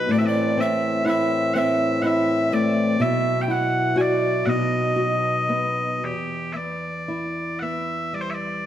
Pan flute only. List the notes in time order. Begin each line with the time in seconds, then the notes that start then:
0.12 D5
0.19 E5
0.27 D5
0.61 E5
1.06 E5
1.55 E5
2.03 E5
2.52 D5
3.00 E5
3.41 G5
3.49 F#5
3.99 D5
4.49 D#5